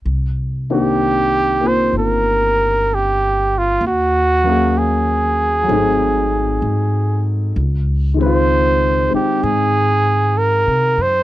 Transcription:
0.05 C2
0.70 D#3 A#3 C4 D4 G4
1.60 A#3 C4 F4
1.68 C5
1.93 G1
1.98 A#4
2.94 G4
3.58 F4
3.81 D#2
3.87 F#4
4.43 F#3 A#3 C#4
4.47 G#4 F5
4.78 G#4
5.63 F#3 A3
5.68 G#1 C4 D#4
5.73 G#4
6.62 G#2
7.56 C#2
8.14 D#3 G#3
8.20 C4 C5
8.26 F4
9.09 G#3 C4
9.14 D#4 G4, muted upright bass stroke
9.43 G#2 G#4
10.38 A#4
10.67 C3
10.98 F#2
11.02 C5

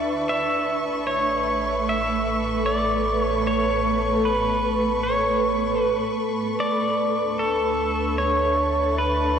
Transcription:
Already playing: D2 D4 B4 D5 E5 A5 C#6
0.28 A1 A3 E5
1.07 C#5
1.26 A4
1.65 B4
1.89 E5
2.66 D5
3.22 C#5
3.47 C#5
4.25 B4
5.03 C#5
5.81 B4
6.60 D2 D4 D5
7.14 A5
7.39 A4 E5
8.18 C#5
8.98 B4

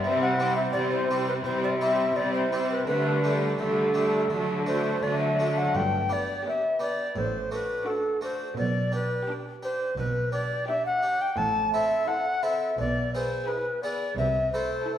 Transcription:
0.04 C3 G3 C4 E4 E5
0.22 F#5
0.38 G3 C4 E4 G4
0.56 E5
0.73 C3 G3 C4 E4 D5
0.91 C5
1.09 G3 C4 E4 G4
1.28 B4
1.44 C3 G3 C4 E4 C5
1.64 D5
1.80 G3 C4 E4 G4 E5
2.16 C3 G3 C4 E4 D5
2.34 C5
2.51 G3 C4 E4 G4
2.71 B4
2.86 D3 G3 A3 D4 B4
3.22 G3 A3 D4 G4
3.59 D3 G3 A3 D4 A4
3.94 G3 A3 D4 G4
4.30 D3 F#3 A3 D4
4.66 F#3 A3 D4 F#4 C5
5.03 D3 F#3 A3 D4 D5
5.20 E5
5.39 F#3 A3 D4 F#4
5.58 F#5
5.75 G1 G2 G5
6.09 B3 D4 G4 D5
6.46 B3 G4 E5 D6
6.79 B3 D4 G4 D5
7.16 A1 A2 C5
7.51 A3 D4 F#4 B4
7.86 D4 F#4 A4 D6
8.21 A3 D4 F#4 C5
8.57 B1 B2 D5
8.92 D4 G4 B4
9.26 D4 G4 D6
9.63 D4 G4 C5
9.97 B1 B2 B4
10.32 D4 G4 D5
10.67 D4 G4 E5 D6
10.86 F#5
11.03 D4 G4
11.21 G5
11.37 A1 A2 A5
11.73 C4 E4 A4 E5
12.08 E4 A4 F#5 C6
12.43 C4 E4 A4 E5
12.78 B1 B2 D5
13.15 B3 E4 G#4 C5
13.46 E4 G#4 B4 B5
13.83 B3 E4 G#4 D5
14.16 C2 C3 E5
14.52 A3 E4 A4 C5
14.85 E4 A4 A5

